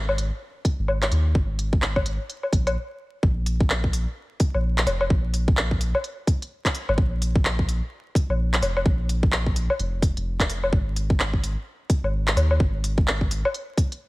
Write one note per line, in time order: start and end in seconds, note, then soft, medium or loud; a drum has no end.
0.00 0.31 G#1 loud
0.09 low woodblock medium
0.18 closed hi-hat medium
0.65 kick medium
0.65 closed hi-hat medium
0.79 1.11 G#1 medium
0.88 low woodblock medium
1.02 clap medium
1.02 closed hi-hat soft
1.02 low woodblock medium
1.12 1.34 D#2 loud
1.12 closed hi-hat medium
1.35 2.18 G#1 loud
1.35 kick loud
1.59 closed hi-hat medium
1.73 kick loud
1.82 clap loud
1.96 kick medium
1.96 low woodblock medium
2.06 closed hi-hat medium
2.30 closed hi-hat soft
2.43 low woodblock soft
2.52 2.76 A#1 medium
2.52 kick loud
2.52 closed hi-hat medium
2.67 closed hi-hat soft
2.67 low woodblock medium
3.23 4.06 A#1 loud
3.23 kick loud
3.46 open hi-hat medium
3.60 kick loud
3.70 clap loud
3.84 kick medium
3.93 open hi-hat medium
4.40 kick loud
4.40 open hi-hat medium
4.54 4.86 A#1 medium
4.54 low woodblock soft
4.78 clap loud
4.78 closed hi-hat soft
4.86 5.09 F1 medium
4.86 open hi-hat medium
4.86 low woodblock medium
5.01 low woodblock medium
5.10 5.93 A#1 loud
5.10 kick loud
5.34 open hi-hat medium
5.48 kick loud
5.57 clap loud
5.71 kick medium
5.81 open hi-hat medium
5.95 low woodblock medium
6.04 closed hi-hat soft
6.27 kick loud
6.27 open hi-hat medium
6.42 closed hi-hat soft
6.65 kick medium
6.65 clap loud
6.65 closed hi-hat soft
6.75 open hi-hat medium
6.88 6.97 G#1 loud
6.88 low woodblock medium
6.98 7.81 A#1 loud
6.98 kick loud
7.22 open hi-hat medium
7.35 kick loud
7.45 clap loud
7.59 kick medium
7.69 open hi-hat medium
8.15 kick loud
8.15 open hi-hat medium
8.29 8.61 A#1 medium
8.29 low woodblock soft
8.54 clap loud
8.54 closed hi-hat soft
8.62 8.84 F1 loud
8.62 open hi-hat medium
8.62 low woodblock medium
8.77 low woodblock medium
8.85 9.68 A#1 loud
8.85 kick loud
9.09 open hi-hat medium
9.23 kick loud
9.32 clap loud
9.46 kick medium
9.56 open hi-hat medium
9.70 low woodblock medium
9.79 10.15 F1 medium
9.79 closed hi-hat soft
10.02 kick loud
10.02 open hi-hat medium
10.17 10.72 F1 medium
10.17 closed hi-hat soft
10.40 kick medium
10.40 clap loud
10.40 closed hi-hat soft
10.50 open hi-hat medium
10.64 low woodblock medium
10.73 11.56 G#1 loud
10.73 kick loud
10.96 open hi-hat medium
11.10 kick loud
11.20 clap loud
11.33 kick medium
11.44 open hi-hat medium
11.90 kick loud
11.90 open hi-hat medium
12.03 12.35 G#1 medium
12.03 low woodblock soft
12.27 clap loud
12.27 closed hi-hat soft
12.36 12.58 D#2 loud
12.36 open hi-hat medium
12.36 low woodblock medium
12.51 low woodblock medium
12.60 13.43 G#1 loud
12.60 kick loud
12.84 open hi-hat medium
12.98 kick loud
13.08 clap loud
13.21 kick medium
13.31 open hi-hat medium
13.45 low woodblock medium
13.54 closed hi-hat soft
13.78 kick loud
13.78 open hi-hat medium
13.92 closed hi-hat soft